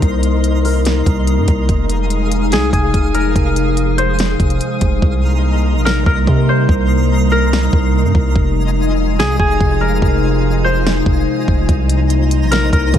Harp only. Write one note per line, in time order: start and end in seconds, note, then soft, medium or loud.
0.00 0.64 A#4 medium
0.00 1.80 C5 medium
0.65 2.77 A#4 medium
2.53 2.73 G#4 medium
2.73 5.00 G#4 medium
3.14 5.26 A#4 medium
3.98 5.96 C5 medium
5.85 6.06 A#4 medium
6.06 7.31 A#4 medium
6.49 8.47 C5 medium
7.32 9.44 A#4 medium
9.19 9.39 G#4 medium
9.39 11.67 G#4 medium
9.81 11.93 A#4 medium
10.64 12.62 C5 medium
12.51 12.72 A#4 medium
12.73 12.99 A#4 medium